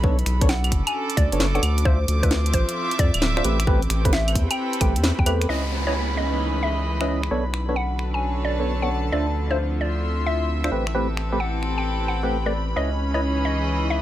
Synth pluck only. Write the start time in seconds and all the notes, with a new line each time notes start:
0.49 F#5
0.87 G#5
1.17 D5
1.55 F#5
1.85 C5
2.23 B4
2.54 C5
2.99 D5
4.13 E5
4.51 G5
4.81 G5
5.19 G5
5.49 D#5
5.87 C#5
6.17 D#5
6.63 E5
7.76 F#5
8.14 G#5
8.45 D5
8.82 F#5
9.12 D5
9.51 C5
9.81 D5
10.26 E5
11.40 F#5
11.78 G5
12.08 F#5
12.46 D5
12.77 D#5
13.14 C#5
13.45 D#5
13.90 E5